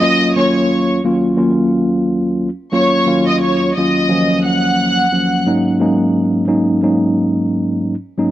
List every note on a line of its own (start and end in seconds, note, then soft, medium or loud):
0.00 0.32 D#2 medium
0.00 0.33 F#3 medium
0.00 0.33 A#3 medium
0.00 0.33 C#4 medium
0.00 0.33 F4 loud
0.00 0.32 D#5 loud
0.00 0.32 D#6 medium
0.35 0.99 D#2 medium
0.35 0.99 F#3 medium
0.35 0.99 A#3 medium
0.35 1.00 C#4 medium
0.35 1.00 F4 loud
0.35 0.86 C#5 medium
0.35 0.86 C#6 medium
1.04 1.35 D#2 medium
1.04 1.36 F#3 medium
1.04 1.36 A#3 medium
1.04 1.36 C#4 medium
1.04 1.36 F4 loud
1.37 2.48 D#2 medium
1.37 2.48 F#3 medium
1.37 2.48 A#3 medium
1.37 2.49 C#4 medium
1.37 2.49 F4 medium
2.72 3.05 D#2 medium
2.72 3.05 F#3 medium
2.72 3.05 A#3 medium
2.72 3.05 C#4 medium
2.72 3.05 F4 loud
2.72 3.25 C#5 loud
2.76 3.25 C#6 medium
3.06 3.71 D#2 loud
3.06 3.71 F#3 medium
3.06 3.71 A#3 medium
3.06 3.71 C#4 medium
3.06 3.71 F4 loud
3.28 3.41 D#5 medium
3.28 3.42 D#6 medium
3.42 3.73 C#5 medium
3.42 3.73 C#6 medium
3.76 4.07 D#2 medium
3.76 4.08 F#3 medium
3.76 4.08 A#3 medium
3.76 4.08 C#4 medium
3.76 4.09 F4 loud
3.76 4.41 D#5 medium
3.76 4.41 D#6 medium
4.08 5.05 D#2 medium
4.08 5.05 F3 loud
4.08 5.05 F#3 medium
4.08 5.05 A#3 medium
4.08 5.05 C#4 medium
4.45 5.43 F#5 medium
4.45 5.44 F#6 medium
5.11 5.44 D#2 medium
5.11 5.45 F3 medium
5.11 5.44 F#3 medium
5.11 5.44 A#3 medium
5.11 5.45 C#4 medium
5.46 5.78 G#2 medium
5.46 5.78 F#3 medium
5.46 5.79 A#3 medium
5.46 5.79 C#4 medium
5.46 5.79 D#4 loud
5.80 6.44 G#2 medium
5.80 6.44 F#3 medium
5.80 6.44 A#3 medium
5.80 6.44 C#4 medium
5.80 6.45 D#4 medium
6.47 6.80 G#2 medium
6.47 6.80 F#3 medium
6.47 6.80 A#3 medium
6.47 6.80 C#4 medium
6.47 6.81 D#4 loud
6.82 7.93 G#2 medium
6.82 7.94 F#3 medium
6.82 7.94 A#3 medium
6.82 7.94 C#4 medium
6.82 7.94 D#4 loud
8.17 8.31 G#2 medium
8.17 8.31 F#3 medium
8.17 8.31 A#3 medium
8.17 8.31 C#4 medium
8.17 8.31 D#4 loud